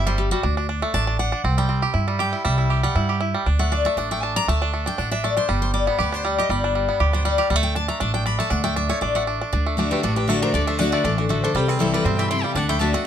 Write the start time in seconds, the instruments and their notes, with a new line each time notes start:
Already playing: upright bass G1, five-string banjo E4 G4
0.07 five-string banjo G3, steel-string acoustic guitar C5
0.18 steel-string acoustic guitar G4
0.31 five-string banjo G3, steel-string acoustic guitar F#4
0.43 upright bass D2, five-string banjo D4
0.57 five-string banjo D4
0.69 five-string banjo D4
0.82 five-string banjo A3
0.94 upright bass A1, five-string banjo D4, steel-string acoustic guitar A5
1.07 five-string banjo D4
1.19 five-string banjo D4, steel-string acoustic guitar F#5
1.32 five-string banjo D4
1.44 upright bass C2, five-string banjo C4
1.58 five-string banjo G3, steel-string acoustic guitar G5
1.69 five-string banjo C4
1.82 five-string banjo G4
1.94 upright bass G2, five-string banjo E4
2.08 five-string banjo G3
2.19 five-string banjo G4, steel-string acoustic guitar G5
2.33 five-string banjo E4
2.45 upright bass C2, five-string banjo G3, steel-string acoustic guitar E5
2.58 five-string banjo E4
2.70 five-string banjo G4
2.83 five-string banjo G3, steel-string acoustic guitar F#5
2.95 upright bass G2, five-string banjo E4
3.09 five-string banjo G4
3.20 five-string banjo E4
3.34 five-string banjo G3
3.46 upright bass D2, five-string banjo D4
3.59 five-string banjo A3, steel-string acoustic guitar F#5
3.72 five-string banjo D4, steel-string acoustic guitar D5
3.85 five-string banjo A3, steel-string acoustic guitar E5
3.97 upright bass A1, five-string banjo D4, steel-string acoustic guitar F#5
4.11 five-string banjo A3, steel-string acoustic guitar G5
4.23 five-string banjo D4, steel-string acoustic guitar A5
4.36 five-string banjo D4, steel-string acoustic guitar A#5
4.48 upright bass D2, five-string banjo A3, steel-string acoustic guitar A5
4.62 five-string banjo D4
4.74 five-string banjo A3
4.86 five-string banjo D4, steel-string acoustic guitar G5
4.98 upright bass A1, five-string banjo D4, steel-string acoustic guitar F#5
5.11 five-string banjo D4, steel-string acoustic guitar E5
5.24 five-string banjo A3, steel-string acoustic guitar D5
5.37 five-string banjo D4, steel-string acoustic guitar C5
5.48 upright bass G1, five-string banjo G3, steel-string acoustic guitar B4
5.62 steel-string acoustic guitar C5
5.74 five-string banjo G3, steel-string acoustic guitar D5
5.87 five-string banjo B3, steel-string acoustic guitar C5
5.99 upright bass D2, five-string banjo G4, steel-string acoustic guitar B4
6.12 five-string banjo D4, steel-string acoustic guitar C5
6.25 five-string banjo G3, steel-string acoustic guitar D5
6.38 five-string banjo G4, steel-string acoustic guitar D#5
6.49 upright bass G1, five-string banjo G3, steel-string acoustic guitar D5
6.64 five-string banjo D4
6.75 five-string banjo G3
6.89 five-string banjo B3
7.00 upright bass D2, five-string banjo G4
7.13 five-string banjo D4, steel-string acoustic guitar C5
7.25 five-string banjo G3, steel-string acoustic guitar D5
7.38 five-string banjo G4, steel-string acoustic guitar F5
7.50 upright bass D2, five-string banjo G3, steel-string acoustic guitar F#5
7.56 five-string banjo A3
7.63 steel-string acoustic guitar G5
7.75 five-string banjo D4, steel-string acoustic guitar A5
7.88 five-string banjo A3, steel-string acoustic guitar A#5
8.00 upright bass A1, five-string banjo D4, steel-string acoustic guitar A5
8.14 five-string banjo D4, steel-string acoustic guitar G5
8.26 five-string banjo D4, steel-string acoustic guitar B5
8.39 five-string banjo A3, steel-string acoustic guitar A5
8.50 upright bass D2, five-string banjo D4, steel-string acoustic guitar F#5
8.64 five-string banjo A3, steel-string acoustic guitar G5
8.76 five-string banjo D4, steel-string acoustic guitar E5
8.89 five-string banjo A3, steel-string acoustic guitar C#5
9.01 upright bass A1, five-string banjo D4, steel-string acoustic guitar D5
9.15 five-string banjo A3, steel-string acoustic guitar F#5
9.27 five-string banjo D4
9.41 five-string banjo D4
9.53 upright bass D2, steel-string acoustic guitar D3, five-string banjo D4
9.66 five-string banjo A3
9.77 steel-string acoustic guitar D3 A3 D4 F#4, five-string banjo D4
9.90 five-string banjo A3, steel-string acoustic guitar G4, fiddle B4
10.03 upright bass A1, steel-string acoustic guitar A2 F#4, five-string banjo D4, fiddle A4
10.16 five-string banjo D4, steel-string acoustic guitar G4, fiddle B4
10.28 steel-string acoustic guitar D3 A3 D4 F#4 A4, five-string banjo A3, fiddle D5
10.42 five-string banjo D4, steel-string acoustic guitar A#4, fiddle C5
10.54 upright bass D2, steel-string acoustic guitar D3 A4, five-string banjo D4, fiddle D5
10.67 five-string banjo A3, steel-string acoustic guitar C5, fiddle E5
10.79 steel-string acoustic guitar D3 A3 D4 F#4 D5, five-string banjo D4, fiddle F#5
10.92 five-string banjo A3, steel-string acoustic guitar B4, fiddle D5
11.04 upright bass A1, steel-string acoustic guitar E3 A4, five-string banjo D4, fiddle D5
11.18 five-string banjo D4, steel-string acoustic guitar D4, fiddle F#4
11.29 steel-string acoustic guitar D3 F#4, five-string banjo A3, fiddle A4
11.42 five-string banjo D4, steel-string acoustic guitar A4, fiddle C5
11.54 upright bass C2, steel-string acoustic guitar C3 G4, five-string banjo G3, fiddle C5
11.68 five-string banjo C4, steel-string acoustic guitar G#4, fiddle B4
11.79 steel-string acoustic guitar E3 G3 C4 E4 A4, five-string banjo E4, fiddle C5
11.93 five-string banjo G3, steel-string acoustic guitar B4, fiddle D5
12.05 upright bass G2, steel-string acoustic guitar B2 C5, five-string banjo C4, fiddle E5
12.17 five-string banjo E3, steel-string acoustic guitar E5, fiddle G5
12.30 steel-string acoustic guitar C3 G5, five-string banjo E4, fiddle C6
12.43 five-string banjo G3, steel-string acoustic guitar F5, fiddle G5
12.55 upright bass D2, steel-string acoustic guitar D3 F#5, five-string banjo D4, fiddle A5
12.69 five-string banjo A3, steel-string acoustic guitar G5, fiddle B5
12.79 steel-string acoustic guitar D3 A3 D4 F#4 E5, five-string banjo D4, fiddle A5
12.93 five-string banjo A3, steel-string acoustic guitar D4 F#4 D#5, fiddle F#5